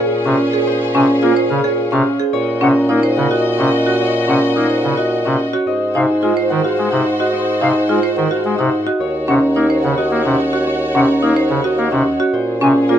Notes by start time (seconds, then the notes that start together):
Already playing: A#2 C#4 G#4 A#4 C5 C#5 F5 G#5
0.25 C3 C#4 F5
0.53 G#4 C5
0.67 C5
0.94 C3 C#4 G#5
1.22 A#3 F4 G#4
1.36 C5
1.50 C#3 F5
1.64 G#4 C#5
1.92 C3 C#4 F5
2.20 G#4 C5
2.33 A#2 F#4 C#5 D#5
2.61 C3 C#4 F#5 A#5
2.89 A#3 D#4 A#4
3.03 C5
3.17 C#3 F#5
3.31 F#4 D#5
3.59 C3 C#4 F#5
3.86 F#4 C#5
4.01 C#5
4.28 C3 C#4 F#5 A#5
4.56 A#3 D#4 A#4
4.70 C5
4.84 C#3 F#5
4.98 F#4 D#5
5.25 C3 C#4 F#5
5.53 F#4 C#5
5.67 G#2 F#4 C5 D#5
5.95 C3 D#4 F5 G#5
6.22 G#3 F4 G#4
6.37 C5
6.50 D#3 F#5
6.64 F#4 F5
6.78 G#3
6.92 C3 D#4 F#5
7.20 F#4 D#5
7.33 D#5
7.61 C3 D#4 F5 G#5
7.89 G#3 F4 G#4
8.03 C5
8.16 D#3 F#5
8.31 F#4 F5
8.45 G#3
8.58 C3 D#4 F#5
8.86 F#4 D#5
9.00 D#2 F#4 C#5
9.28 C3 C#4 F#5 A#5
9.56 A#3 D#4 A#4
9.70 C5
9.84 C#3 F#5
9.98 F#4 D#5
10.11 A#3
10.25 C3 C#4 F#5
10.53 F#4 C#5
10.67 C#5
10.95 C3 C#4 F#5 A#5
11.23 A#3 D#4 A#4
11.36 C5
11.50 C#3 F#5
11.64 F#4 D#5
11.78 A#3
11.92 C3 C#4 F#5
12.20 F#4 C#5
12.33 A#2 C#4 G#4 C5
12.61 C3 C#4 G#5
12.89 A#3 F4 G#4